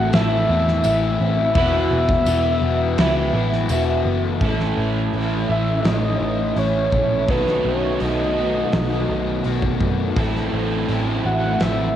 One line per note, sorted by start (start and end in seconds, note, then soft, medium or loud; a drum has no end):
0.00 0.12 A1 loud
0.00 0.11 A2 loud
0.00 0.13 E3 medium
0.00 0.13 E3 loud
0.00 0.49 E3 medium
0.00 0.12 A3 loud
0.00 0.13 A3 medium
0.00 0.12 C4 loud
0.00 0.14 C4 medium
0.00 0.85 C4 medium
0.00 0.14 E4 medium
0.00 0.15 E4 loud
0.00 0.15 E4 medium
0.00 1.56 F#4 medium
0.00 0.12 A4 loud
0.00 0.16 F#5 loud
0.13 0.47 A1 loud
0.13 0.84 A2 loud
0.13 0.84 E3 loud
0.13 0.50 A3 loud
0.13 0.49 C4 loud
0.13 0.85 E4 medium
0.13 0.48 E4 loud
0.13 1.55 A4 loud
0.13 1.55 E5 loud
0.13 snare loud
0.13 crash medium
0.49 0.83 E2 medium
0.49 1.56 E3 medium
0.49 0.84 A3 medium
0.49 0.85 C4 medium
0.49 0.86 E4 medium
0.68 snare soft
0.84 1.18 A1 medium
0.84 1.56 E3 medium
0.84 1.54 A3 medium
0.84 1.54 C4 medium
0.84 2.27 E4 medium
0.84 1.57 E4 medium
0.84 tambourine loud
0.84 crash medium
1.20 1.54 A1 medium
1.20 1.56 C4 medium
1.55 1.89 E1 loud
1.55 2.63 E2 loud
1.55 2.63 B2 loud
1.55 3.33 E3 medium
1.55 2.25 E3 loud
1.55 2.96 F#3 loud
1.55 2.26 B3 loud
1.55 2.27 E4 loud
1.55 2.28 F#4 loud
1.55 2.97 B4 loud
1.55 3.66 E5 loud
1.55 kick loud
1.55 crash medium
1.91 2.25 E1 loud
1.91 3.70 B3 medium
2.09 kick loud
2.26 2.60 E1 medium
2.26 2.97 E3 medium
2.26 2.98 B3 medium
2.26 2.98 E4 medium
2.26 2.99 F#4 medium
2.26 tambourine loud
2.26 crash medium
2.62 2.96 E1 medium
2.62 4.42 F#4 medium
2.97 3.32 C#2 loud
2.97 3.69 E2 medium
2.97 3.70 B2 loud
2.97 3.35 E3 loud
2.97 4.39 F#3 medium
2.97 3.34 B3 loud
2.97 3.69 E4 medium
2.97 3.34 E4 loud
2.97 3.33 F#4 loud
2.97 4.40 B4 medium
2.97 snare loud
2.97 crash medium
3.33 3.67 A1 medium
3.33 4.39 E3 medium
3.33 3.68 E3 medium
3.33 3.69 B3 medium
3.33 3.70 E4 medium
3.33 3.71 F#4 medium
3.53 snare soft
3.69 4.04 E1 loud
3.69 4.39 E3 medium
3.69 4.40 B3 medium
3.69 4.41 E4 medium
3.69 4.40 E4 medium
3.69 4.40 F#4 medium
3.69 tambourine medium
3.69 crash medium
4.05 4.39 F#1 loud
4.05 4.41 B3 medium
4.41 4.72 A1 medium
4.41 5.49 A2 medium
4.41 6.19 E3 medium
4.41 5.12 E3 loud
4.41 5.14 A3 medium
4.41 5.14 C#4 medium
4.41 5.15 E4 loud
4.41 7.31 A4 medium
4.41 kick loud
4.41 open hi-hat soft
4.60 snare soft
4.76 5.08 A1 medium
4.76 5.12 A3 medium
5.13 5.44 A1 medium
5.13 5.84 E3 medium
5.13 6.56 A3 medium
5.13 5.51 A3 medium
5.13 5.49 C#4 medium
5.13 5.47 E4 medium
5.13 open hi-hat soft
5.49 5.80 A1 medium
5.49 5.85 A3 medium
5.49 5.85 C#4 medium
5.49 5.85 E4 medium
5.49 5.88 E5 loud
5.84 6.16 A1 medium
5.84 6.93 A2 medium
5.84 6.56 E3 medium
5.84 6.57 A3 medium
5.84 7.29 C#4 medium
5.84 6.57 C#4 loud
5.84 6.58 E4 medium
5.84 6.60 D#5 loud
5.84 snare loud
5.84 open hi-hat medium
6.20 6.51 A1 medium
6.20 6.92 E3 medium
6.56 6.87 A1 loud
6.56 7.27 E3 medium
6.56 7.64 A3 medium
6.56 7.30 A3 medium
6.56 7.28 C#4 medium
6.56 7.28 E4 medium
6.56 7.32 C#5 loud
6.56 open hi-hat soft
6.92 7.28 A#1 medium
6.92 7.29 E3 medium
6.92 kick medium
7.28 7.59 B1 medium
7.28 8.37 B2 medium
7.28 7.99 D#3 loud
7.28 8.01 F#3 medium
7.28 10.17 F#3 medium
7.28 8.01 A3 loud
7.28 8.01 B3 loud
7.28 10.18 D#4 medium
7.28 8.03 F#4 loud
7.28 10.17 A4 medium
7.28 7.67 B4 medium
7.28 kick loud
7.28 open hi-hat medium
7.47 snare soft
7.65 7.96 B1 medium
7.65 8.72 A3 medium
7.65 8.02 C#5 loud
8.00 8.62 B1 medium
8.00 8.72 D#3 medium
8.00 9.09 F#3 medium
8.00 8.38 A3 medium
8.00 8.37 B3 medium
8.00 8.36 F#4 medium
8.00 9.81 D#5 medium
8.00 open hi-hat medium
8.36 8.73 A3 medium
8.36 8.73 B3 medium
8.36 10.17 D#4 medium
8.36 8.75 F#4 medium
8.72 9.04 B1 medium
8.72 9.81 B2 medium
8.72 9.43 D#3 medium
8.72 10.17 A3 medium
8.72 9.44 A3 medium
8.72 9.45 B3 loud
8.72 9.46 F#4 loud
8.72 snare loud
8.72 open hi-hat medium
9.09 9.40 B1 loud
9.09 9.45 F#3 medium
9.44 9.76 B1 medium
9.44 10.14 D#3 medium
9.44 9.82 F#3 medium
9.44 10.15 A3 medium
9.44 10.15 B3 medium
9.44 10.18 F#4 medium
9.44 open hi-hat soft
9.63 kick medium
9.81 10.12 F#2 medium
9.81 10.17 F#3 medium
9.81 kick medium
10.16 10.47 A1 loud
10.16 11.25 A2 medium
10.16 10.88 E3 loud
10.16 10.88 F#3 medium
10.16 10.89 A3 loud
10.16 10.89 C4 loud
10.16 10.91 E4 loud
10.16 11.96 A4 medium
10.16 kick loud
10.16 open hi-hat medium
10.36 snare soft
10.53 10.84 A1 medium
10.53 11.61 C4 medium
10.89 11.20 A1 medium
10.89 11.61 E3 medium
10.89 11.96 F#3 medium
10.89 11.26 A3 medium
10.89 11.25 C4 medium
10.89 11.25 E4 medium
10.89 open hi-hat soft
11.25 11.56 A1 medium
11.25 11.61 A3 medium
11.25 11.62 C4 medium
11.25 11.63 E4 medium
11.25 11.96 E4 medium
11.25 11.64 F#5 loud
11.60 11.91 A1 medium
11.60 11.96 A2 medium
11.60 11.96 E3 medium
11.60 11.96 A3 loud
11.60 11.96 C4 medium
11.60 11.96 C4 loud
11.60 11.96 E4 loud
11.60 11.96 E5 loud
11.60 snare loud
11.60 open hi-hat soft